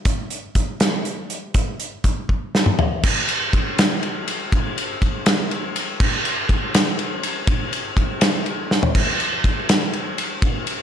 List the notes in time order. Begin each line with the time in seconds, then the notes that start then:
0.05 kick, closed hi-hat
0.30 closed hi-hat
0.55 kick, closed hi-hat
0.80 snare, closed hi-hat
1.05 closed hi-hat
1.30 closed hi-hat
1.54 kick, closed hi-hat
1.80 closed hi-hat
2.04 kick, closed hi-hat
2.29 kick
2.55 snare
2.66 mid tom
2.79 floor tom
3.03 kick, crash
3.29 ride
3.53 kick, ride
3.78 snare, ride
4.03 ride
4.28 ride
4.52 kick, ride
4.78 ride
5.02 kick, ride
5.26 snare, ride
5.51 ride
5.76 ride
6.00 kick, crash
6.25 ride
6.49 kick, ride
6.74 snare, ride
6.99 ride
7.23 ride
7.47 kick, ride
7.73 ride
7.97 kick, ride
8.21 snare, ride
8.46 ride
8.71 snare
8.83 floor tom
8.95 kick, crash
9.20 ride
9.44 kick, ride
9.69 snare, ride
9.93 ride
10.18 ride
10.42 kick, ride
10.67 ride